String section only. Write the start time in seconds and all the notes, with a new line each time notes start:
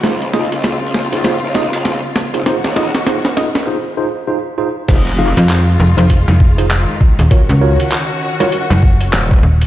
0.03 C#3 C4 F4
2.46 D#3 C#4 F#4
4.89 D#3 G#3 F4
7.32 C#4 F#4